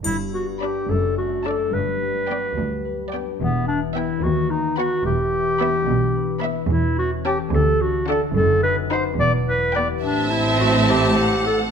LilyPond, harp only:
\new Staff \with { instrumentName = "Harp" } { \time 6/8 \key g \major \tempo 4. = 72 g,8 b8 <d' d''>8 fis,8 a8 <d' d''>8 | g,8 g8 fis8 g8 b'8 d'8 | e8 e'8 <e' b'>8 dis8 b8 <fis' b'>8 | e8 e'8 d'8 e'8 b'8 e'8 |
e8 cis'8 <g' a'>8 d8 d'8 <fis' a'>8 | fis,8 dis'8 <fis' b'>8 e,8 e'8 <g' b'>8 | a,8 c'8 b8 c'8 a'8 e'8 | }